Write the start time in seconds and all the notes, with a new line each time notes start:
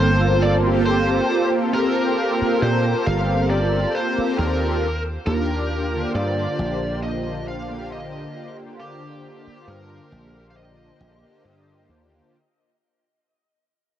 Already playing: G1 A#3 C4 F4 A4 C5
0.00 C5
0.42 D5
0.64 A#3 C4 F4 G4
0.86 C5
1.74 A#3 C4 F4 A#4
2.40 A#3 C4 F4 C5, muted slap bass stroke
2.62 A#2 C5
3.06 G1 F5
3.50 D5
3.95 C5
4.18 A#3 C4 F4 G4, muted slap bass stroke
4.38 D#2 A#4
5.26 D#2 A#3 D4 F4 G4 A#4
5.93 D3 A#3 F4 C5
6.15 G2 D5
6.59 A#1
7.03 D#5
7.48 F5
7.70 D3 A#3 F4 G4
7.92 D#5
8.80 A#3 D4 F4 G4
9.46 D3 A#3 F4 C5, muted slap bass stroke
9.68 G2 A#4
10.12 A#1
10.50 F5
10.57 D#5
11.00 A#1
11.23 D3 A#3 F4 G4, muted slap bass stroke
11.45 G2
11.89 D#2